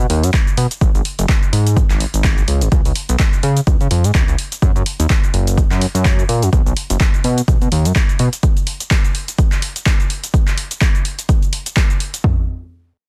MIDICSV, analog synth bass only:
0, 0, Header, 1, 2, 480
1, 0, Start_track
1, 0, Key_signature, 6, "major"
1, 0, Tempo, 476190
1, 820, Time_signature, 4, 2, 24, 8
1, 13186, End_track
2, 0, Start_track
2, 0, Title_t, "Analog synth bass"
2, 0, Program_c, 0, 38
2, 98, Note_on_c, 0, 39, 101
2, 234, Note_on_c, 0, 42, 100
2, 249, Note_off_c, 0, 39, 0
2, 306, Note_off_c, 0, 42, 0
2, 578, Note_on_c, 0, 47, 100
2, 672, Note_off_c, 0, 47, 0
2, 820, Note_on_c, 0, 32, 110
2, 912, Note_off_c, 0, 32, 0
2, 955, Note_on_c, 0, 32, 101
2, 1026, Note_off_c, 0, 32, 0
2, 1195, Note_on_c, 0, 30, 101
2, 1266, Note_off_c, 0, 30, 0
2, 1538, Note_on_c, 0, 44, 93
2, 1845, Note_off_c, 0, 44, 0
2, 1916, Note_on_c, 0, 32, 102
2, 2069, Note_off_c, 0, 32, 0
2, 2156, Note_on_c, 0, 32, 99
2, 2447, Note_off_c, 0, 32, 0
2, 2501, Note_on_c, 0, 37, 85
2, 2636, Note_on_c, 0, 32, 91
2, 2651, Note_off_c, 0, 37, 0
2, 2707, Note_off_c, 0, 32, 0
2, 2740, Note_on_c, 0, 37, 111
2, 2833, Note_off_c, 0, 37, 0
2, 2876, Note_on_c, 0, 37, 96
2, 2946, Note_off_c, 0, 37, 0
2, 3116, Note_on_c, 0, 35, 108
2, 3187, Note_off_c, 0, 35, 0
2, 3460, Note_on_c, 0, 49, 92
2, 3634, Note_off_c, 0, 49, 0
2, 3700, Note_on_c, 0, 37, 82
2, 3793, Note_off_c, 0, 37, 0
2, 3837, Note_on_c, 0, 49, 84
2, 3907, Note_off_c, 0, 49, 0
2, 3940, Note_on_c, 0, 41, 96
2, 4075, Note_on_c, 0, 44, 102
2, 4090, Note_off_c, 0, 41, 0
2, 4146, Note_off_c, 0, 44, 0
2, 4180, Note_on_c, 0, 37, 87
2, 4273, Note_off_c, 0, 37, 0
2, 4316, Note_on_c, 0, 37, 98
2, 4387, Note_off_c, 0, 37, 0
2, 4660, Note_on_c, 0, 42, 115
2, 4753, Note_off_c, 0, 42, 0
2, 4795, Note_on_c, 0, 42, 101
2, 4866, Note_off_c, 0, 42, 0
2, 5035, Note_on_c, 0, 39, 107
2, 5106, Note_off_c, 0, 39, 0
2, 5380, Note_on_c, 0, 30, 91
2, 5686, Note_off_c, 0, 30, 0
2, 5756, Note_on_c, 0, 42, 104
2, 5908, Note_off_c, 0, 42, 0
2, 5994, Note_on_c, 0, 42, 98
2, 6286, Note_off_c, 0, 42, 0
2, 6339, Note_on_c, 0, 46, 83
2, 6476, Note_on_c, 0, 42, 89
2, 6491, Note_off_c, 0, 46, 0
2, 6547, Note_off_c, 0, 42, 0
2, 6579, Note_on_c, 0, 35, 108
2, 6672, Note_off_c, 0, 35, 0
2, 6716, Note_on_c, 0, 35, 100
2, 6786, Note_off_c, 0, 35, 0
2, 6957, Note_on_c, 0, 30, 104
2, 7027, Note_off_c, 0, 30, 0
2, 7301, Note_on_c, 0, 47, 89
2, 7474, Note_off_c, 0, 47, 0
2, 7540, Note_on_c, 0, 35, 81
2, 7633, Note_off_c, 0, 35, 0
2, 7677, Note_on_c, 0, 47, 84
2, 7747, Note_off_c, 0, 47, 0
2, 7781, Note_on_c, 0, 39, 100
2, 7918, Note_on_c, 0, 42, 98
2, 7933, Note_off_c, 0, 39, 0
2, 7988, Note_off_c, 0, 42, 0
2, 8260, Note_on_c, 0, 47, 99
2, 8353, Note_off_c, 0, 47, 0
2, 13186, End_track
0, 0, End_of_file